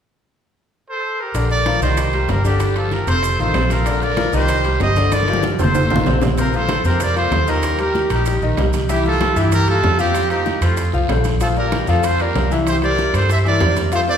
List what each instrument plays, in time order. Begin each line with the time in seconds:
0.89 trumpet section A4 C5
1.19 trumpet section G4 A#4
1.34 fingered electric bass A#1, grand piano D3 D4 D5, high bongo, high conga, high timbale, long guiro, maracas
1.50 trumpet section A#4 D5, high conga, maracas
1.66 grand piano F3 F4 A#4, high bongo, high conga, high timbale, low timbale, short guiro, maracas
1.81 fingered electric bass C2, grand piano D#3 D#4 D#5, trumpet section G4 C5, short guiro, maracas
1.97 high bongo, high conga, high timbale, long guiro, maracas
2.13 grand piano G3 G4 A#4, high conga, high timbale, maracas
2.28 fingered electric bass G1, trumpet section G4 A#4, high bongo, low bongo, high conga, high timbale, low timbale, short guiro, maracas
2.44 grand piano D3 D4 D5, trumpet section D4 G4, high conga, short guiro, maracas
2.60 high bongo, high conga, high timbale, long guiro, maracas
2.75 grand piano F3 F4 G4, trumpet section F4 A4, high bongo, high conga, high timbale, maracas
2.91 trumpet section G4 A#4, high bongo, high conga, low timbale, short guiro, maracas
3.07 fingered electric bass F1, grand piano C3 C4 C5, trumpet section A4 C5, high timbale, short guiro, maracas
3.23 high bongo, high conga, high timbale, long guiro, maracas
3.38 fingered electric bass A1, grand piano D#3 D#4 F4, trumpet section A4 C5, high bongo, high conga, maracas
3.54 fingered electric bass A#1, grand piano C3 C4 C5, high bongo, low bongo, high conga, high timbale, low timbale, short guiro, maracas
3.70 trumpet section F4 A#4, high bongo, high conga, high timbale, short guiro, maracas
3.86 grand piano D3 D4 D5, high bongo, high conga, high timbale, long guiro, maracas
4.02 trumpet section A#4 D5, high conga, maracas
4.17 grand piano F3 F4 A#4, high bongo, high conga, high timbale, low timbale, short guiro, maracas
4.33 fingered electric bass C2, grand piano D#3 D#4 D#5, trumpet section G4 C5, short guiro, maracas
4.48 high bongo, high conga, high timbale, long guiro, maracas
4.64 grand piano G3 G4 A#4, high conga, high timbale, maracas
4.80 fingered electric bass G1, trumpet section C5 D#5, high bongo, low bongo, high conga, high timbale, low timbale, short guiro, maracas
4.96 grand piano D3 D4 D5, high conga, short guiro, maracas
5.12 trumpet section A#4 D5, high bongo, high conga, high timbale, long guiro, maracas
5.23 high conga
5.28 grand piano F3 F4 G4, high bongo, high timbale, maracas
5.33 high conga
5.43 high bongo, high conga, low timbale, short guiro, maracas
5.59 fingered electric bass F1, grand piano C3 C4 C5, trumpet section A4 C5, high timbale, short guiro, maracas
5.64 low conga
5.75 low conga, high timbale, long guiro, maracas
5.85 low conga
5.90 fingered electric bass A1, grand piano D#3 D#4 F4, low bongo, high timbale, maracas
5.96 low conga
6.05 fingered electric bass A#1, grand piano C3 C4 C5, low bongo, low conga, low timbale, short guiro, maracas
6.22 low bongo, low timbale, short guiro, maracas
6.27 low conga
6.38 grand piano C3 C4 C5, trumpet section F4 A#4, high bongo, high conga, high timbale, long guiro, maracas
6.53 grand piano F3 A#3 F4, trumpet section A4 C5, high conga, maracas
6.69 high bongo, high conga, high timbale, low timbale, short guiro, maracas
6.84 fingered electric bass F2, grand piano C3 C4 C5, trumpet section G4 A#4, short guiro, maracas
7.00 trumpet section A#4 D5, high bongo, high conga, high timbale, long guiro, maracas
7.16 grand piano F3 A#3 F4, trumpet section A4 C5, high conga, high timbale, maracas
7.31 fingered electric bass D#2, high bongo, low bongo, high conga, high timbale, low timbale, short guiro, maracas
7.47 grand piano D#3 D#4 D#5, trumpet section G4 A#4, high conga, short guiro, maracas
7.63 high bongo, high conga, high timbale, long guiro, maracas
7.79 grand piano G3 G4 A#4, trumpet section G4 A#4, high bongo, high conga, high timbale, maracas
7.94 high bongo, high conga, low timbale, short guiro, maracas
8.10 fingered electric bass A#1, grand piano G3 G4 A#4, trumpet section D#4 G4, high conga, high timbale, short guiro, maracas
8.26 high bongo, high conga, high timbale, long guiro, maracas
8.42 fingered electric bass A#1, grand piano D#3 D#4 D#5, high bongo, high conga, maracas
8.57 fingered electric bass C2, grand piano G3 G4 A#4, high bongo, low bongo, high conga, high timbale, low timbale, short guiro, maracas
8.73 high bongo, high conga, high timbale, short guiro, maracas
8.89 grand piano E3 E4 E5, trumpet section E4 G4, high bongo, high conga, high timbale, long guiro, maracas
9.05 grand piano G3 A#3 G4, trumpet section F4 A4, high conga, maracas
9.20 high bongo, high conga, high timbale, low timbale, short guiro, maracas
9.36 fingered electric bass G2, grand piano E3 E4 E5, trumpet section E4 G4, short guiro, maracas
9.52 trumpet section G4 A#4, high bongo, high conga, high timbale, long guiro, maracas
9.68 grand piano G3 A#3 G4, trumpet section F4 A4, high conga, high timbale, maracas
9.83 fingered electric bass F2, high bongo, low bongo, high conga, high timbale, low timbale, short guiro, maracas
9.99 grand piano F3 F4 F5, trumpet section C4 G4, high conga, short guiro, maracas
10.14 high bongo, high conga, high timbale, long guiro, maracas
10.30 grand piano A#3 A#4 C5, trumpet section D#4 G4, high bongo, high conga, high timbale, maracas
10.46 high bongo, high conga, low timbale, short guiro, maracas
10.61 fingered electric bass F2, grand piano A3 A4 C5, trumpet section C4 F4, high conga, high timbale, short guiro, maracas
10.77 high bongo, high conga, high timbale, long guiro, maracas
10.93 fingered electric bass C2, grand piano F3 F4 F5, high bongo, high conga, maracas
11.09 fingered electric bass A#1, grand piano A3 A4 C5, high bongo, low bongo, high conga, high timbale, low timbale, short guiro, maracas
11.24 high bongo, high conga, high timbale, short guiro, maracas
11.40 grand piano F3 F4 F5, trumpet section F4 A4, high bongo, high conga, high timbale, long guiro, maracas
11.56 grand piano A#3 A#4 D5, trumpet section G4 A#4, high conga, maracas
11.72 high bongo, high conga, high timbale, low timbale, short guiro, maracas
11.87 fingered electric bass F2, grand piano F3 F4 F5, trumpet section F4 A4, short guiro, maracas
12.03 trumpet section F4 C5, high bongo, high conga, high timbale, long guiro, maracas
12.19 grand piano A#3 A#4 D5, trumpet section G4 A#4, high conga, high timbale, maracas
12.35 fingered electric bass C2, high bongo, low bongo, high conga, high timbale, low timbale, short guiro, maracas
12.51 grand piano E3 E4 E5, high conga, short guiro, maracas
12.67 trumpet section G4 C5, high bongo, high conga, high timbale, long guiro, maracas
12.82 grand piano G3 G4 C5, trumpet section A#4 D5, high bongo, high conga, high timbale, maracas
12.98 high bongo, high conga, low timbale, short guiro, maracas
13.14 fingered electric bass G2, grand piano G3 G4 C5, trumpet section A4 C5, high conga, high timbale, short guiro, maracas
13.29 trumpet section C5 E5, high bongo, high conga, high timbale, long guiro, maracas
13.45 grand piano E3 E4 E5, trumpet section A#4 D5, high bongo, high conga, maracas
13.60 fingered electric bass F2, grand piano G3 G4 C5, high bongo, low bongo, high conga, high timbale, low timbale, short guiro, maracas
13.76 high bongo, high conga, high timbale, short guiro, maracas
13.92 grand piano F3 F4 F5, trumpet section A4 C5, high bongo, high conga, high timbale, long guiro, maracas
14.08 grand piano C4 F4 C5, trumpet section A#4 D5, high conga, maracas